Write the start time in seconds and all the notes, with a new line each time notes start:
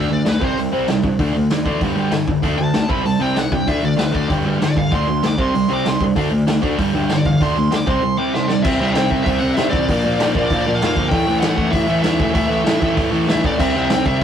Already playing: D4
0.00 E5
0.10 D2 D3 A3 D5
0.25 D2 D3 A3 B4, snare, open hi-hat
0.40 C2 C3 G3 C4, kick
0.44 C5
0.57 C2 C3 G3, open hi-hat
0.72 C2 C3 G3 C4
0.87 C2 C3 G3, snare, open hi-hat
1.03 G2 C3 G3, kick
1.19 D2 D3 A3 D4, kick, open hi-hat
1.33 D2 D3 A3
1.50 D2 D3 A3, snare, open hi-hat
1.65 A1 D3 A3 D4, kick
1.81 G1 G2 D3 G3, kick, open hi-hat
1.96 D2 G2 D3 G3
2.11 G1 G2 D3, snare, open hi-hat
2.27 G1 G2 D3, kick
2.42 D2 D3 A3 D4, kick, open hi-hat
2.57 D2 D3 A3 A5
2.74 D2 D3 A3, snare, open hi-hat
2.88 C2 C3 G3 C4 B5, kick
3.04 C2 C3 G3 A5, open hi-hat
3.19 C2 C3 G3 C4 G5
3.35 C2 C3 G3 F#5, snare, open hi-hat
3.52 G2 C3 G3 G5, kick
3.67 D2 D3 A3 D4 E5, kick, open hi-hat
3.82 D2 D3 A3 D5
3.96 D2 D3 A3 B4, snare, open hi-hat
4.11 D2 D3 A3 D4 D5, kick
4.29 G1 G2 D3 G3, kick, open hi-hat
4.45 D2 G2 D3 G3
4.59 G1 G2 D3, snare, open hi-hat
4.64 D5
4.76 G1 G2 D3 F5, kick
4.91 D2 D3 A3 D4, kick, open hi-hat
4.95 C6
5.08 D2 D3 A3
5.23 D2 D3 A3, snare, open hi-hat
5.27 D6
5.38 C2 C3 G3 C4 C6, kick
5.54 C2 C3 G3, open hi-hat
5.68 C2 C3 G3 C4
5.74 D6
5.85 C2 C3 G3 C6, snare, open hi-hat
6.00 G2 C3 G3, kick
6.16 D2 D3 A3 D4, kick, open hi-hat
6.30 D2 D3 A3
6.47 D2 D3 A3, snare, open hi-hat
6.62 D2 D3 A3 D4, kick
6.78 G1 G2 D3 G3, kick, open hi-hat
6.94 D2 G2 D3 G3
7.08 G1 G2 D3, snare, open hi-hat
7.12 D5
7.25 E2 G2 D3 F5, kick
7.40 D2 D3 A3 D4 C6, kick, open hi-hat
7.56 D2 D3 A3
7.71 D2 D3 A3, snare, open hi-hat
7.76 D6
7.86 C2 C3 G3 C4 C6, kick
8.01 C3 G3
8.18 C3 G3 C4 D6
8.34 C3 G3 E5 C6, snare
8.48 C3 G3 D5, snare
8.63 C2 C3 G3 C4 E5, kick, crash
8.80 C2 C3 G3 C4 E5
8.92 C3 G3 G5, snare, open hi-hat
8.96 C2 C4
9.10 C2 C3 G3 C4 E5, kick
9.23 C2 C3 G3 C4 E5, kick, open hi-hat
9.39 C3 G3 C4 F#5
9.44 C2
9.54 C3 G3 E5, snare, open hi-hat
9.58 G2 C4
9.70 A1 C3 G3 C4 D5, kick
9.88 A#1 A#2 F3 A#3, kick, open hi-hat
10.04 A#1 A#2 F3 A#3
10.20 A#1 A#2 F3 A#3, snare, open hi-hat
10.35 A#1 A#2 F3 A#3, kick
10.50 A#1 A#2 F3 A#3, kick, open hi-hat
10.61 D5
10.67 A#1 A#2 F3 A#3
10.75 F5
10.82 F1 A#2 F3 A#3, snare, open hi-hat
10.96 G1 A#2 F3 A#3, kick
11.08 A1 A2 E3 A3 G5, kick, open hi-hat
11.27 A1 A2 E3 A3
11.40 A1 A2 E3 A3 F#5, snare, open hi-hat
11.56 A1 A2 E3 A3, kick
11.71 A1 A2 E3 A3 E5, kick, open hi-hat
11.87 A1 A2 E3 A3
12.02 E2 A2 E3 A3 E5, snare, open hi-hat
12.20 E1 A2 E3 A3, kick
12.33 A1 A2 E3 A3 E5, kick, open hi-hat
12.48 A1 A2 E3 A3
12.64 A1 A2 E3 A3, snare, open hi-hat
12.80 A1 A2 E3 A3, kick
12.95 A1 A2 E3 A3, kick, open hi-hat
13.11 A1 A2 E3 A3
13.27 E1 A2 E3 A3 E5, snare, open hi-hat
13.43 A1 A2 E3 A3 D5, kick
13.58 C2 C3 G3 C4 E5, kick, crash
13.75 C2 C3 G3 C4
13.82 E5
13.89 C2 C3 G3 C4 G5, snare, open hi-hat
14.06 C2 C3 G3 C4 E5, kick